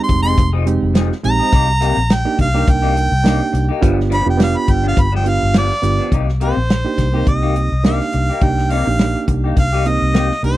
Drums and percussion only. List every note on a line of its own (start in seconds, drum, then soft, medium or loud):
0.09 kick medium
0.09 closed hi-hat medium
0.38 kick loud
0.38 closed hi-hat medium
0.67 closed hi-hat medium
0.95 snare loud
0.95 closed hi-hat medium
1.12 snare soft
1.24 closed hi-hat medium
1.53 kick loud
1.53 closed hi-hat medium
1.82 closed hi-hat medium
2.10 snare loud
2.10 closed hi-hat medium
2.39 kick medium
2.39 closed hi-hat medium
2.68 kick loud
2.68 closed hi-hat medium
2.97 closed hi-hat medium
3.25 snare loud
3.25 closed hi-hat medium
3.54 closed hi-hat medium
3.83 kick loud
3.83 closed hi-hat medium
4.00 snare soft
4.12 closed hi-hat medium
4.40 snare loud
4.40 closed hi-hat medium
4.68 kick medium
4.68 closed hi-hat medium
4.97 kick loud
4.97 closed hi-hat medium
5.26 closed hi-hat medium
5.54 snare loud
5.54 closed hi-hat medium
5.71 snare soft
5.83 closed hi-hat medium
6.12 kick loud
6.12 closed hi-hat medium
6.29 snare soft
6.41 closed hi-hat medium
6.70 snare loud
6.70 closed hi-hat medium
6.98 kick medium
6.98 snare soft
6.98 closed hi-hat medium
7.27 kick loud
7.27 closed hi-hat medium
7.56 closed hi-hat soft
7.84 snare loud
7.84 closed hi-hat medium
8.00 snare soft
8.12 closed hi-hat medium
8.41 kick loud
8.41 closed hi-hat medium
8.58 snare soft
8.70 closed hi-hat medium
8.99 snare loud
8.99 closed hi-hat medium
9.28 kick medium
9.28 closed hi-hat medium
9.57 kick loud
9.57 closed hi-hat medium
9.86 closed hi-hat medium
10.14 snare medium
10.14 closed hi-hat medium
10.31 snare soft
10.44 closed hi-hat medium